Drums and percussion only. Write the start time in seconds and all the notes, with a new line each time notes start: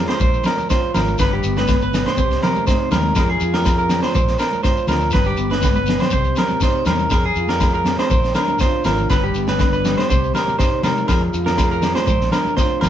0.08 snare, high conga, low agogo
0.20 kick, shekere
0.34 shekere
0.44 snare, low conga, low agogo, shekere
0.57 high conga, shekere
0.70 kick, snare, shekere
0.94 snare, high conga, low conga, low agogo, shekere
1.08 shekere
1.18 kick, snare, low agogo, shekere
1.43 shekere
1.56 snare, high conga, shekere
1.68 kick, snare, low agogo, shekere
1.81 shekere
1.94 snare, low conga, shekere
2.06 snare, high conga, low agogo
2.17 kick, shekere
2.30 snare, shekere
2.42 snare, low conga, low agogo
2.56 high conga, shekere
2.67 kick, snare, shekere
2.91 snare, high conga, low conga, low agogo, shekere
3.15 kick, snare, low agogo, shekere
3.40 shekere
3.54 snare, high conga, shekere
3.65 kick, snare, low agogo, shekere
3.78 shekere
3.90 snare, low conga, shekere
4.02 snare, high conga, low agogo
4.15 kick, shekere
4.28 snare, shekere
4.39 snare, low agogo, shekere
4.52 high conga, shekere
4.64 kick, snare, shekere
4.77 shekere
4.88 snare, low conga, low agogo, shekere
5.00 shekere
5.11 kick, snare, low conga, low agogo, shekere
5.24 shekere
5.37 shekere
5.50 snare, high conga, shekere
5.62 kick, snare, high conga, low agogo, shekere
5.75 high conga, shekere
5.86 snare, low conga, shekere
5.98 snare, low conga, low agogo, shekere
6.10 kick, shekere
6.24 shekere
6.36 snare, low conga, low agogo, shekere
6.48 high conga, shekere
6.60 kick, snare, shekere
6.85 snare, high conga, low conga, low agogo, shekere
6.99 shekere
7.10 kick, snare, low agogo, shekere
7.35 shekere
7.48 snare, high conga, shekere
7.60 kick, snare, low agogo, shekere
7.74 shekere
7.84 snare, low conga, shekere
7.96 snare, high conga, low agogo
8.10 kick, shekere
8.23 snare, shekere
8.35 snare, low conga, low agogo, shekere
8.48 high conga, shekere
8.59 kick, snare, shekere
8.84 snare, high conga, low conga, low agogo, shekere
8.98 shekere
9.10 kick, snare, low agogo, shekere
9.34 shekere
9.47 snare, high conga, shekere
9.59 kick, snare, low agogo, shekere
9.73 shekere
9.84 snare, low conga, shekere
9.98 snare, high conga, low agogo
10.10 kick, shekere
10.23 shekere
10.34 snare, low conga, low agogo, shekere
10.48 high conga, shekere
10.59 kick, snare, shekere
10.83 snare, high conga, low conga, low agogo, shekere
10.97 shekere
11.08 kick, snare, low agogo, shekere
11.34 shekere
11.46 snare, high conga, shekere
11.58 kick, snare, low agogo, shekere
11.72 shekere
11.82 snare, low conga, shekere
11.95 snare, high conga, low agogo
12.07 kick, shekere
12.21 snare, shekere
12.31 snare, low conga, low agogo, shekere
12.45 high conga, shekere
12.57 kick, snare, shekere
12.81 snare, high conga, low conga, low agogo, shekere